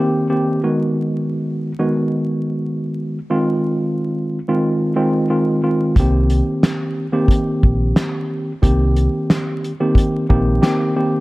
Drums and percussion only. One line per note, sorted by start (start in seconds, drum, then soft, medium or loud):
5.96 kick loud
5.96 closed hi-hat medium
6.30 closed hi-hat medium
6.63 snare loud
6.63 clap medium
6.63 closed hi-hat medium
7.28 kick loud
7.28 closed hi-hat medium
7.63 kick loud
7.96 snare loud
7.96 clap medium
7.96 closed hi-hat medium
8.63 kick loud
8.63 closed hi-hat medium
8.96 closed hi-hat medium
9.30 snare loud
9.30 clap medium
9.30 closed hi-hat medium
9.64 closed hi-hat soft
9.95 kick loud
9.95 closed hi-hat medium
10.30 kick loud
10.63 snare loud
10.63 clap loud
10.63 closed hi-hat medium